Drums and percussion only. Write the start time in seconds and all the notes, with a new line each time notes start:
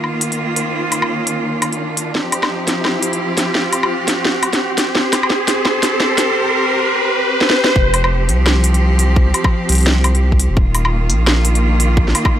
0.04 low woodblock
0.21 closed hi-hat
0.32 closed hi-hat
0.56 closed hi-hat
0.92 closed hi-hat, low woodblock
1.02 low woodblock
1.27 closed hi-hat
1.62 closed hi-hat, low woodblock
1.73 closed hi-hat
1.97 closed hi-hat
2.15 snare
2.32 closed hi-hat, low woodblock
2.43 snare, low woodblock
2.68 snare, closed hi-hat
2.85 snare, low woodblock
3.03 closed hi-hat
3.13 closed hi-hat
3.37 snare, closed hi-hat
3.55 snare
3.73 closed hi-hat, low woodblock
3.83 low woodblock
4.08 snare, closed hi-hat
4.25 snare
4.43 closed hi-hat, low woodblock
4.53 snare, closed hi-hat
4.78 snare, closed hi-hat
4.95 snare
5.13 snare, closed hi-hat, low woodblock
5.23 low woodblock
5.30 snare
5.48 snare, closed hi-hat
5.65 snare, low woodblock
5.83 snare, closed hi-hat
6.00 snare
6.18 snare, closed hi-hat
7.41 snare
7.50 snare
7.64 snare
7.76 kick
7.94 closed hi-hat, low woodblock
8.04 low woodblock
8.29 closed hi-hat
8.46 snare, low woodblock
8.64 closed hi-hat
8.74 closed hi-hat
8.99 closed hi-hat
9.16 kick
9.34 closed hi-hat, low woodblock
9.44 kick, low woodblock
9.69 closed hi-hat
9.72 closed hi-hat
9.75 closed hi-hat
9.78 closed hi-hat
9.80 closed hi-hat
9.83 snare, closed hi-hat
10.04 closed hi-hat, low woodblock
10.15 closed hi-hat
10.32 kick
10.40 closed hi-hat
10.57 kick
10.75 closed hi-hat, low woodblock
10.85 low woodblock
11.10 closed hi-hat
11.27 snare, low woodblock
11.45 closed hi-hat
11.55 closed hi-hat
11.80 closed hi-hat
11.97 kick
12.08 snare
12.15 closed hi-hat, low woodblock
12.25 kick, low woodblock